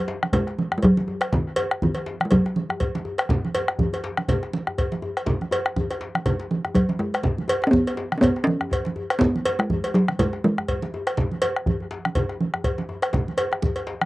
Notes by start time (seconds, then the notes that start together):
Already playing: F#3
0.08 djembe slap
0.23 bombo rim, high conga
0.33 G#3, bombo low, cowbell, djembe tone, djembe bass, low conga
0.47 bombo rim, djembe slap
0.58 high conga
0.72 bombo rim, djembe tone
0.78 G#3
0.82 F#3, bombo low, cowbell, djembe bass
0.97 djembe slap, high conga
1.08 djembe tone
1.21 bombo rim, cowbell
1.32 D#3, bombo rim, bombo low, djembe slap, high conga, djembe bass, low conga
1.56 cowbell, djembe tone, high conga
1.71 bombo rim, djembe slap
1.82 D#3, bombo low, high conga, djembe bass
1.95 cowbell, djembe tone
2.06 djembe slap
2.20 bombo rim, high conga
2.25 G#3
2.31 F#3, bombo low, cowbell, djembe tone, djembe bass, low conga
2.46 bombo rim, djembe slap
2.56 high conga
2.69 bombo rim, djembe tone
2.80 bombo low, cowbell, djembe bass
2.95 djembe slap, high conga
3.05 djembe tone
3.18 bombo rim, cowbell
3.29 bombo rim, bombo low, djembe slap, high conga, djembe bass, low conga
3.45 high conga
3.55 cowbell, djembe tone, high conga
3.68 bombo rim, djembe slap
3.79 bombo low, high conga, djembe bass
3.93 cowbell, djembe slap, djembe tone
4.04 djembe slap
4.17 bombo rim, high conga
4.28 bombo low, cowbell, djembe tone, low conga, djembe bass
4.43 bombo rim, djembe slap
4.53 high conga
4.67 bombo rim, djembe tone
4.78 bombo low, cowbell, djembe bass
4.92 djembe slap, high conga
5.02 djembe tone
5.17 bombo rim, cowbell
5.26 bombo low, djembe slap, djembe bass, low conga
5.41 bombo rim, high conga
5.51 cowbell, djembe slap, djembe tone
5.65 bombo rim, djembe slap
5.76 bombo rim, bombo low, high conga, djembe bass
5.90 bombo rim, cowbell, djembe slap, high conga, djembe tone
6.01 djembe slap
6.15 bombo rim, high conga
6.26 bombo low, cowbell, djembe slap, djembe tone, djembe bass, low conga
6.39 djembe slap
6.51 djembe slap, high conga
6.64 bombo rim, high conga, djembe tone
6.75 F#3, bombo low, cowbell, djembe slap, djembe bass
6.89 djembe slap, high conga
6.99 G#3, bombo rim, high conga, djembe tone
7.13 bombo rim, cowbell, djembe slap
7.23 bombo rim, bombo low, djembe slap, high conga, low conga, djembe bass
7.38 high conga
7.48 cowbell, djembe tone, high conga
7.62 bombo rim, djembe slap
7.67 C#4
7.71 B3, bombo low, high conga, djembe bass
7.87 cowbell, djembe slap, djembe tone
7.97 djembe slap
8.12 bombo rim, high conga
8.18 B3 C#4
8.22 bombo low, cowbell, djembe tone, djembe bass, low conga
8.36 bombo rim, djembe slap
8.44 C#4, high conga
8.61 bombo rim, djembe tone
8.71 bombo low, cowbell, djembe bass
8.85 djembe slap, high conga
8.96 djembe tone
9.10 bombo rim, cowbell
9.19 B3, bombo rim, bombo low, djembe slap, high conga, djembe bass, low conga
9.36 high conga
9.45 cowbell, djembe tone, high conga
9.59 G#3, bombo rim, djembe slap
9.70 bombo low, high conga, djembe bass
9.84 cowbell, djembe slap, djembe tone
9.94 F#3, djembe slap
10.08 bombo rim, high conga
10.19 G#3, bombo low, cowbell, djembe tone, djembe bass, low conga
10.33 bombo rim, djembe slap
10.44 G#3, high conga
10.58 bombo rim, djembe tone
10.68 bombo low, cowbell, djembe bass
10.82 djembe slap, high conga
10.94 djembe tone
11.07 bombo rim, cowbell
11.17 bombo rim, bombo low, djembe slap, high conga, low conga, djembe bass
11.31 high conga
11.42 cowbell, djembe tone, high conga
11.56 bombo rim
11.66 bombo low, high conga, djembe bass
11.80 djembe slap, djembe tone
11.91 djembe slap
12.05 bombo rim, high conga
12.15 bombo low, cowbell, djembe tone, djembe bass, low conga
12.29 bombo rim, djembe slap
12.41 high conga
12.54 bombo rim, djembe tone
12.64 bombo low, cowbell, djembe bass
12.78 djembe slap, high conga
12.89 djembe tone
13.02 bombo rim, cowbell
13.13 bombo rim, bombo low, djembe slap, high conga, djembe bass, low conga
13.27 djembe slap, high conga
13.37 bombo rim, cowbell, djembe tone
13.52 bombo rim, djembe slap, high conga
13.62 bombo low, high conga, djembe bass
13.76 cowbell, djembe tone
13.87 djembe slap
14.01 bombo rim, high conga